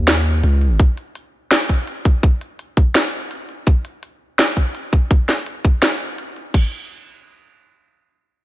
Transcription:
0.00 0.42 D#2 medium
0.08 snare loud
0.08 closed hi-hat medium
0.26 closed hi-hat medium
0.43 0.78 C#2 medium
0.43 closed hi-hat medium
0.61 closed hi-hat soft
0.80 kick loud
0.80 closed hi-hat medium
0.97 closed hi-hat medium
1.15 closed hi-hat medium
1.51 snare loud
1.51 closed hi-hat medium
1.69 kick medium
1.69 closed hi-hat medium
1.74 closed hi-hat soft
1.79 closed hi-hat soft
1.83 closed hi-hat soft
1.87 closed hi-hat medium
2.05 kick loud
2.05 closed hi-hat soft
2.23 kick loud
2.23 closed hi-hat medium
2.41 closed hi-hat medium
2.59 closed hi-hat medium
2.77 kick loud
2.95 snare loud
2.95 closed hi-hat medium
3.13 closed hi-hat medium
3.31 closed hi-hat medium
3.49 closed hi-hat soft
3.67 kick loud
3.67 closed hi-hat medium
3.85 closed hi-hat medium
4.03 closed hi-hat medium
4.39 snare loud
4.39 closed hi-hat medium
4.57 kick medium
4.57 closed hi-hat medium
4.75 closed hi-hat medium
4.93 kick medium
4.93 closed hi-hat soft
5.11 kick loud
5.11 closed hi-hat medium
5.29 snare medium
5.29 closed hi-hat medium
5.46 closed hi-hat medium
5.65 kick medium
5.82 snare loud
5.82 closed hi-hat medium
6.00 closed hi-hat medium
6.18 closed hi-hat medium
6.36 closed hi-hat soft
6.54 kick medium
6.54 crash medium

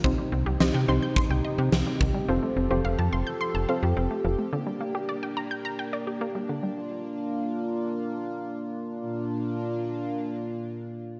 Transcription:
0.04 0.15 C2 loud
0.04 2.26 C3 medium
0.04 0.13 D#3 loud
0.04 0.44 C4 medium
0.04 4.49 C4 medium
0.04 0.44 D#4 medium
0.04 2.26 D#4 medium
0.04 0.44 G4 medium
0.04 6.73 G4 medium
0.04 0.44 C5 loud
0.04 kick loud
0.18 0.27 G3 medium
0.32 0.43 C2 loud
0.32 0.41 C4 medium
0.46 0.57 C2 loud
0.46 0.55 G4 medium
0.60 0.71 C2 loud
0.60 0.80 C4 medium
0.60 0.80 D#4 medium
0.60 0.80 G4 medium
0.60 0.80 C5 loud
0.60 0.70 D#5 medium
0.60 snare loud
0.74 0.85 C3 loud
0.74 0.84 G5 medium
0.88 0.99 C2 loud
0.88 1.69 C4 medium
0.88 1.69 D#4 medium
0.88 1.69 G4 medium
0.88 1.69 C5 loud
0.88 0.97 C6 medium
1.02 1.12 G6 medium
1.16 1.26 C6 loud
1.16 kick medium
1.30 1.41 C2 medium
1.30 1.40 G5 medium
1.45 1.54 D#5 medium
1.58 1.69 C3 loud
1.58 1.68 G4 medium
1.72 1.83 C2 loud
1.72 1.82 C4 medium
1.72 snare loud
1.87 1.96 G3 medium
2.01 2.12 C2 medium
2.01 2.10 D#3 medium
2.01 kick medium
2.15 2.24 G3 medium
2.28 2.40 F1 loud
2.28 2.38 F3 loud
2.28 4.51 F3 medium
2.28 2.59 C4 medium
2.28 2.59 F4 medium
2.28 4.51 A4 medium
2.28 2.59 A4 medium
2.28 2.59 C5 loud
2.43 2.52 A3 medium
2.56 2.68 F1 medium
2.56 2.66 C4 medium
2.70 2.82 F1 loud
2.70 3.41 C4 medium
2.70 3.41 F4 medium
2.70 2.80 G4 medium
2.70 3.41 A4 medium
2.70 3.41 C5 loud
2.84 2.96 F1 loud
2.84 2.94 F5 medium
2.98 3.10 F2 medium
2.98 3.08 A5 medium
3.12 3.24 F1 loud
3.12 3.22 C6 medium
3.27 3.36 G6 medium
3.41 3.50 C6 loud
3.55 3.66 F1 medium
3.55 3.64 A5 medium
3.69 4.29 C4 medium
3.69 4.29 F4 medium
3.69 4.29 A4 medium
3.69 4.29 C5 loud
3.69 3.78 F5 medium
3.83 3.94 F2 loud
3.83 3.92 G4 medium
3.97 4.08 F1 loud
3.97 4.06 C4 medium
4.11 4.20 A3 medium
4.25 4.36 F1 loud
4.25 4.34 F3 medium
4.39 4.48 A3 medium
4.53 4.62 D3 loud
4.53 6.75 A#3 medium
4.53 8.97 D4 medium
4.67 4.76 G3 medium
4.81 4.90 A#3 medium
4.95 5.04 G4 medium
5.09 5.18 D5 medium
5.23 5.32 G5 medium
5.37 5.46 A#5 medium
5.51 5.60 G6 medium
5.65 5.74 A#5 loud
5.79 5.88 G5 medium
5.93 6.02 D5 medium
6.07 6.16 G4 medium
6.21 6.30 A#3 medium
6.35 6.44 G3 medium
6.49 6.58 D3 medium
6.63 6.72 G3 medium
6.77 8.99 A#3 medium
6.77 8.99 F4 medium
9.01 11.20 A#2 medium
9.01 11.20 A#3 medium
9.01 11.20 D4 medium
9.01 11.20 F4 medium

